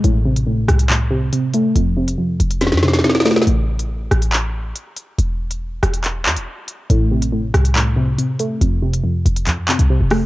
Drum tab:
HH |x-----x-----x-x---------x---x---|x-----x-----x-x-x-----x-----o---|x-----x-----x-x---------x---x---|x-----x-----x-x-x-----x-----x---|
CP |----------------x---------------|--------------------------------|----------------x---------------|----------------x---x-----------|
SD |------------r-------------------|----------------oooooooooooooooo|------------r-------------------|------------r-------------------|

HH |x-----x-----x-x---------x---x---|x-----x-----x-x-x-----x-----o---|
CP |----------------x---------------|----------------x---x-----------|
SD |------------r-------------------|----------------------------r---|